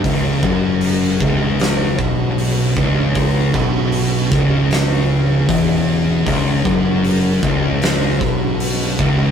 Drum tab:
HH |o-o-o-o-|o-o-o-o-|o-o-o-o-|
SD |----o---|---oo---|----o---|
BD |oo-o-o-o|oo-o--o-|oo-o-o-o|